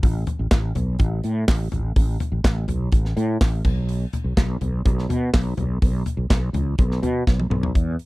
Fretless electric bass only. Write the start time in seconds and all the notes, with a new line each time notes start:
0.03 A1
0.39 A1
0.51 A1
0.75 B1
0.99 A1
1.24 A2
1.48 A1
1.72 A1
1.96 A1
2.32 A1
2.44 A1
2.68 B1
2.92 A1
3.17 A2
3.41 A1
3.64 B1
4.24 B1
4.37 B1
4.61 B1
4.85 B1
5.09 B2
5.34 B1
5.57 B1
5.82 B1
6.17 B1
6.30 B1
6.53 C#2
6.79 B1
7.02 B2
7.27 B1
7.50 B1
7.75 E2